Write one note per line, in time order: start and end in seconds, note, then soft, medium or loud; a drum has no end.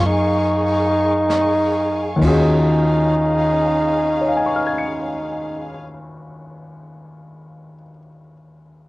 0.00 2.16 F#2 medium
0.00 2.21 A#3 soft
0.00 2.21 D#4 soft
0.00 2.16 G#4 medium
0.00 2.22 G#4 soft
0.00 2.22 C#5 medium
0.00 2.16 F5 medium
0.00 2.16 G#5 medium
0.00 2.16 C#6 medium
0.06 2.21 D#4 medium
1.30 brush sweep soft
1.30 snare soft
1.30 hi-hat pedal soft
2.16 5.73 D#2 medium
2.16 5.76 D#3 soft
2.21 5.75 D#2 medium
2.21 5.79 C#4 soft
2.21 5.75 C#4 medium
2.21 5.81 F4 soft
2.21 5.76 G#4 medium
2.21 5.74 F5 medium
2.21 kick medium
2.21 crash medium
2.26 5.81 D#4 medium
2.26 5.83 F#4 soft
2.26 5.85 G#4 medium
4.21 7.74 C#5 soft
4.28 7.82 F5 soft
4.37 7.90 G#5 soft
4.46 7.99 C#6 soft
4.56 8.09 F6 soft
4.67 8.20 G#6 soft
4.78 8.31 C#7 soft